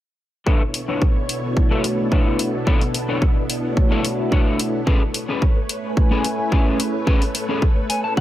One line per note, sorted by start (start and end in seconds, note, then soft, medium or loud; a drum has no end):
0.46 4.83 B2 medium
0.46 4.83 B3 medium
0.46 0.61 D4 medium
0.46 4.83 D4 medium
0.46 4.83 E4 medium
0.46 0.61 E4 medium
0.46 4.83 A4 medium
0.46 0.61 A4 medium
0.46 0.61 B4 medium
0.46 2.65 C#5 medium
0.46 0.61 C#5 loud
0.46 kick loud
0.74 muted clean electric guitar stroke soft
0.74 open hi-hat medium
0.88 1.02 D4 medium
0.88 1.02 E4 medium
0.88 1.02 A4 medium
0.88 1.02 B4 medium
0.88 1.02 C#5 medium
1.02 kick medium
1.16 muted clean electric guitar stroke soft
1.29 open hi-hat medium
1.43 1.81 A3 medium
1.43 1.81 D4 medium
1.43 1.81 E4 medium
1.43 1.81 F#4 medium
1.43 1.81 C#5 loud
1.57 kick loud
1.71 1.84 D4 loud
1.71 1.84 E4 medium
1.71 1.84 A4 medium
1.71 1.84 B4 medium
1.71 1.85 C#5 loud
1.84 2.23 A3 medium
1.84 2.23 D4 medium
1.84 2.23 E4 medium
1.84 2.23 F#4 medium
1.84 2.23 E5 medium
1.84 open hi-hat medium
1.99 muted clean electric guitar stroke soft
2.11 2.39 D4 medium
2.11 2.39 E4 medium
2.11 2.39 A4 medium
2.11 2.40 B4 medium
2.11 2.40 C#5 medium
2.11 kick medium
2.26 2.36 A3 medium
2.26 2.36 D4 medium
2.26 2.36 E4 medium
2.26 2.36 F#4 medium
2.26 2.36 C#5 medium
2.39 2.55 A3 medium
2.39 2.55 D4 medium
2.39 2.55 E4 medium
2.39 2.55 F#4 medium
2.39 2.55 C#5 medium
2.39 open hi-hat medium
2.66 2.81 D4 loud
2.66 2.81 E4 medium
2.66 2.81 A4 medium
2.66 2.82 B4 medium
2.66 2.82 C#5 loud
2.66 kick loud
2.81 open hi-hat medium
2.94 muted clean electric guitar stroke soft
2.94 open hi-hat medium
3.08 3.22 D4 medium
3.08 3.22 E4 medium
3.08 3.22 A4 medium
3.08 3.22 B4 medium
3.08 3.22 C#5 medium
3.22 kick loud
3.36 muted clean electric guitar stroke soft
3.50 open hi-hat loud
3.63 4.01 A3 medium
3.63 4.01 D4 medium
3.63 4.01 E4 medium
3.63 4.01 F#4 medium
3.63 4.02 C#5 loud
3.77 kick loud
3.91 4.04 D4 loud
3.91 4.04 E4 medium
3.91 4.04 A4 medium
3.91 4.05 B4 medium
3.91 4.05 C#5 loud
4.04 4.43 A3 medium
4.04 4.43 D4 medium
4.04 4.43 E4 medium
4.04 4.43 F#4 medium
4.04 4.43 E5 medium
4.04 open hi-hat medium
4.19 muted clean electric guitar stroke soft
4.31 4.59 D4 medium
4.31 4.59 E4 medium
4.31 4.59 A4 medium
4.31 4.60 B4 medium
4.31 4.60 C#5 medium
4.31 kick loud
4.46 4.56 A3 medium
4.46 4.56 D4 medium
4.46 4.57 E4 medium
4.46 4.57 F#4 medium
4.46 4.57 C#5 medium
4.59 4.75 A3 medium
4.59 4.75 D4 medium
4.59 4.75 E4 medium
4.59 4.75 F#4 medium
4.59 4.75 C#5 medium
4.59 open hi-hat loud
4.86 8.21 A3 medium
4.86 5.01 C#4 medium
4.86 5.01 G#4 medium
4.86 5.02 A4 medium
4.86 8.21 B4 medium
4.86 5.02 B4 loud
4.86 8.21 C#5 medium
4.86 kick loud
5.14 muted clean electric guitar stroke soft
5.14 open hi-hat loud
5.28 5.42 C#4 medium
5.28 5.42 G#4 medium
5.28 5.42 A4 medium
5.28 5.42 B4 medium
5.42 kick loud
5.56 muted clean electric guitar stroke soft
5.69 open hi-hat loud
5.84 6.21 A3 medium
5.84 6.21 C#4 medium
5.84 6.22 E4 medium
5.84 6.22 B4 loud
5.84 6.22 G#5 medium
5.97 kick loud
6.11 6.24 C#4 loud
6.11 6.24 G#4 medium
6.11 6.25 A4 medium
6.11 6.25 B4 loud
6.24 6.63 A3 medium
6.24 6.63 C#4 medium
6.24 6.63 E4 medium
6.24 6.64 E5 medium
6.24 6.63 G#5 medium
6.24 open hi-hat loud
6.38 muted clean electric guitar stroke soft
6.52 6.79 C#4 medium
6.52 6.80 G#4 medium
6.52 6.80 A4 medium
6.52 6.80 B4 medium
6.52 kick loud
6.66 6.76 A3 medium
6.66 6.76 C#4 medium
6.66 6.77 E4 medium
6.66 6.77 G#4 medium
6.66 6.77 B4 medium
6.79 6.95 A3 medium
6.79 6.95 C#4 medium
6.79 6.95 E4 medium
6.79 6.95 G#4 medium
6.79 6.95 B4 medium
6.79 open hi-hat loud
7.06 7.21 C#4 medium
7.06 7.22 G#4 medium
7.06 7.22 A4 medium
7.06 7.22 B4 loud
7.06 kick loud
7.22 open hi-hat medium
7.34 muted clean electric guitar stroke soft
7.34 open hi-hat loud
7.49 7.62 C#4 medium
7.49 7.62 G#4 medium
7.49 7.62 A4 medium
7.49 7.62 B4 medium
7.62 kick loud
7.76 muted clean electric guitar stroke soft
7.90 8.03 G#5 medium
7.90 open hi-hat loud
8.04 8.21 A3 medium
8.04 8.21 C#4 medium
8.04 8.21 E4 medium
8.04 8.21 B4 loud
8.04 8.16 A5 medium
8.17 8.21 F#5 medium
8.17 kick loud